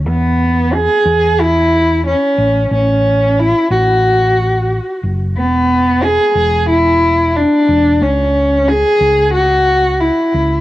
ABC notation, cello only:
X:1
M:4/4
L:1/8
Q:1/4=90
K:Emix
V:1 name="Cello"
B,2 G2 E2 C2 | C2 E F4 z | B,2 G2 E2 D2 | C2 G2 F2 E2 |]